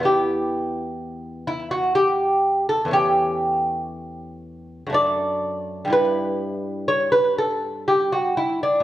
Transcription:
<<
  \new Staff \with { instrumentName = "Lute" } { \time 3/4 \key e \minor \tempo 4 = 62 g'4. e'16 fis'16 g'8. a'16 | \key e \dorian g'2 d''4 | b'4 cis''16 b'16 a'8 g'16 fis'16 e'16 d'16 | }
  \new Staff \with { instrumentName = "Lute" } { \time 3/4 \key e \minor <e, b e'>2. | \key e \dorian <e, a cis'>2 <fis, a d'>4 | <g, g e'>2. | }
>>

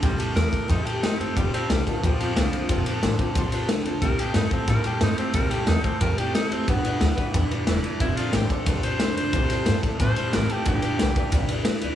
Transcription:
<<
  \new Staff \with { instrumentName = "Tenor saxophone" } { \time 4/4 \key c \major \tempo 4 = 181 r4 bes'4 ees'8 g'8 ees'8 c'8 | g8 c'8 g8 ees8 f2~ | f4 r2. | bes'8 g'8 ees'8 c'8 bes'8 g'8 ees'8 c'8 |
bes'8 g'8 ees'8 c'8 bes'8 g'8 ees'8 c'8 | b2 r2 | e'8 f'8 g'8 a'4 c''4 c''8~ | c''4. r8 c''4 bes'8 g'8 |
g'2 r2 | }
  \new Staff \with { instrumentName = "Steel-string acoustic guitar" } { \time 4/4 \key c \major <c' e' g' a'>8 <e' g' a'>8 <c' e' g' a'>8 <e' g' a'>8 <c' e' g' a'>8 <e' g' a'>8 <c' e' g' a'>8 <e' g' a'>8 | <d f c' f' a' c''>8 <c' f' a' c''>8 <c' f' a' c''>8 <c' f' a' c''>8 <d f c' f' a' c''>8 <c' f' a' c''>8 <c' f' a' c''>8 <c' f' a' c''>8 | <d f c' f' a' c''>8 <c' f' a' c''>8 <c' f' a' c''>8 <c' f' a' c''>8 <d f c' f' a' c''>8 <c' f' a' c''>8 <c' f' a' c''>8 <c' f' a' c''>8 | <c g a c' e' a'>8 <a c' e' a'>8 <a c' e' a'>8 <a c' e' a'>8 <c g a c' e' a'>8 <a c' e' a'>8 <a c' e' a'>8 <a c' e' a'>8 |
<c g a c' e' a'>8 <a c' e' a'>8 <a c' e' a'>8 <a c' e' a'>8 <c g a c' e' a'>8 <a c' e' a'>8 <a c' e' a'>8 <a c' e' a'>8 | <g b d' e' b'>8 <d' e' b'>8 <b d' e' b'>8 <d' e' b'>8 <g b d' e' b'>8 <d' e' b'>8 <b d' e' b'>8 <d' e' b'>8 | <f a d' a' c''>8 <d' a' c''>8 <a d' a' c''>8 <d' a' c''>8 <f a d' a' c''>8 <d' a' c''>8 <a d' a' c''>8 <d' a' c''>8 | <c e g c' e' a'>8 <g c' e' a'>8 <g c' e' a'>8 <g c' e' a'>8 <c e g c' e' a'>8 <g c' e' a'>8 <g c' e' a'>8 <g c' e' a'>8 |
<g d' e' b'>8 <d' e' b'>8 <g d' e' b'>8 <d' e' b'>8 <g d' e' b'>8 <d' e' b'>8 <g d' e' b'>8 <d' e' b'>8 | }
  \new Staff \with { instrumentName = "Clean electric guitar" } { \clef bass \time 4/4 \key c \major <c g>8 <c g>8 <c a>8 <c a>8 <c g>8 <c g>8 <c a>8 <c a>8 | <f, c>8 <f, c>8 <f, d>8 <f, d>8 <f, c>8 <f, c>8 <f, d>8 <f, d>8 | <f, c>8 <f, c>8 <f, d>8 <f, d>8 <f, c>8 <f, c>8 <f, d>8 <f, d>8 | <c g>8 <c g>8 <c a>8 <c a>8 <c g>8 <c g>8 <c a>8 <c a>8 |
<c g>8 <c g>8 <c a>8 <c a>8 <c g>8 <c g>8 <c a>8 <c a>8 | <g, d>8 <g, d>8 <g, e>8 <g, e>8 <g, d>8 <g, d>8 <g, e>8 <g, e>8 | <f, c>8 <f, c>8 <f, d>8 <f, d>8 <f, c>8 <f, c>8 <f, d>8 <f, d>8 | <c g>8 <c g>8 <c a>8 <c a>8 <c g>8 <c g>8 <c a>8 <c a>8 |
<g, d>8 <g, d>8 <g, e>8 <g, e>8 <g, d>8 <g, d>8 <g, e>8 <g, e>8 | }
  \new Staff \with { instrumentName = "Upright bass" } { \clef bass \time 4/4 \key c \major c,8 r8 e,8 r8 f,8 r8 g,8 g,8 | f,,8 r8 c,8 r8 d,8 r8 c,8 r8 | f,,8 r8 a,,8 r8 bes,,8 r8 c,8 c,8 | c,8 r8 g,8 r8 a,8 r8 g,8 r8 |
c,8 r8 e,8 r8 f,8 r8 g,8 g,8 | g,,8 r8 d,8 r8 e,8 r8 e,,8 r8 | f,,8 r8 a,,8 r8 bes,,8 r8 c,8 c,8 | c,8 r8 g,8 r8 a,8 r8 a,,8 r8 |
g,,8 r8 b,,8 r8 c,8 r8 d,8 d,8 | }
  \new DrumStaff \with { instrumentName = "Drums" } \drummode { \time 4/4 <bd cymr>8 cymr8 <cymr sn>8 <bd cymr>8 <bd cymr>8 cymr8 <cymr sn>8 cymr8 | <bd cymr>8 cymr8 <cymr sn>8 <bd cymr>8 <bd cymr>8 cymr8 <cymr sn>8 cymr8 | <bd cymr>8 cymr8 <cymr sn>8 <bd cymr>8 <bd cymr>8 cymr8 <cymr sn>8 cymr8 | <bd cymr>8 cymr8 <cymr sn>8 <bd cymr>8 <bd cymr>8 cymr8 <cymr sn>8 cymr8 |
<bd cymr>8 cymr8 <cymr sn>8 <bd cymr>8 <bd cymr>8 cymr8 <cymr sn>8 cymr8 | <bd cymr>8 cymr8 <cymr sn>8 <bd cymr>8 <bd cymr>8 cymr8 <cymr sn>8 cymr8 | <bd cymr>8 cymr8 <cymr sn>8 <bd cymr>8 <bd cymr>8 cymr8 <cymr sn>8 cymr8 | <bd cymr>8 cymr8 <cymr sn>8 <bd cymr>8 <bd cymr>8 cymr8 <cymr sn>8 cymr8 |
<bd cymr>8 cymr8 <cymr sn>8 <bd cymr>8 <bd cymr>8 cymr8 <cymr sn>8 cymr8 | }
>>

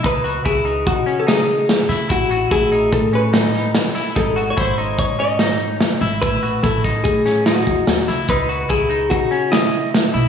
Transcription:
<<
  \new Staff \with { instrumentName = "Hollow-body jazz guitar" } { \time 5/4 \key cis \minor \tempo 4 = 146 b'4 gis'4 \tuplet 3/2 { fis'4~ fis'16 a'16 } gis'4. r8 | fis'4 gis'4 a'8 b'2 r8 | \tuplet 3/2 { a'4~ a'16 cis''16 } bis'4 cis''8 dis''2 r8 | b'4 a'4 gis'4 fis'4. r8 |
b'4 gis'4 fis'4 e'4. r8 | }
  \new Staff \with { instrumentName = "Clean electric guitar" } { \time 5/4 \key cis \minor dis'8 fis'8 e'8 dis'4 cis'8 dis'4 r8 e'8 | e'8 fis'8 e'8 dis'4 cis'8 dis'4 r8 e'8 | dis'8 fis'8 e'8 dis'4 cis'8 dis'4 r8 e'8 | e'8 fis'8 e'8 dis'4 cis'8 dis'4 r8 e'8 |
dis'8 fis'8 e'8 dis'4 cis'8 dis''4 r8 e'8 | }
  \new Staff \with { instrumentName = "Upright bass" } { \clef bass \time 5/4 \key cis \minor cis,4 cis,4 cis2 r8 cis8 | a,,4 a,,4 a,2 r4 | gis,,4 gis,,4 gis,2 r8 gis,,8 | a,,4 a,,4 a,4. e,8 dis,8 cis,8 |
cis,4 cis,4 cis2 r8 b,,8 | }
  \new DrumStaff \with { instrumentName = "Drums" } \drummode { \time 5/4 <hh bd>8 hh8 <hh bd>8 hh8 <hh bd>8 hh8 <hh sn>8 hh8 <hh sn>8 <hh sn>8 | <hh bd>8 hh8 <hh bd>8 hh8 <hh bd>8 hh8 <hh sn>8 <hh sn>8 <hh sn>8 <hh sn>8 | <hh bd>8 hh8 <hh bd>8 hh8 <hh bd>8 hh8 <hh sn>8 hh8 <hh sn>8 hh8 | <hh bd>8 hh8 <hh bd sn>8 <hh bd sn>8 <hh bd>8 <hh sn>8 <hh sn>8 <hh bd>8 <hh sn>8 <hh sn>8 |
<hh bd>8 hh8 <hh bd>8 hh8 <hh bd>8 hh8 <hh sn>8 hh8 <hh sn>8 hh8 | }
>>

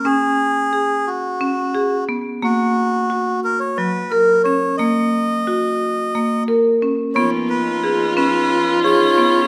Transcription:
<<
  \new Staff \with { instrumentName = "Melodica" } { \time 7/8 \key des \mixolydian \tempo 4 = 89 aes'4. ges'4. r8 | ges'4. bes'16 des''16 ces''8 bes'8 des''8 | ees''2~ ees''8 r4 | des''8 ces''4 ces''4 des''4 | }
  \new Staff \with { instrumentName = "Viola" } { \time 7/8 \key des \mixolydian r2. r8 | r2. r8 | r2. r8 | f'2.~ f'8 | }
  \new Staff \with { instrumentName = "String section" } { \time 7/8 \key des \mixolydian r2. r8 | r2. r8 | r2. r8 | <f des' ees' ces''>2.~ <f des' ees' ces''>8 | }
  \new Staff \with { instrumentName = "Marimba" } { \time 7/8 \key des \mixolydian des'4 aes'4 des'8 aes'8 ces'8 | bes4 ges'4 ges8 bes'8 des'8 | bes4 ges'4 bes8 bes'8 des'8 | ces'4 aes'8 des'4 aes'8 ces'8 | }
>>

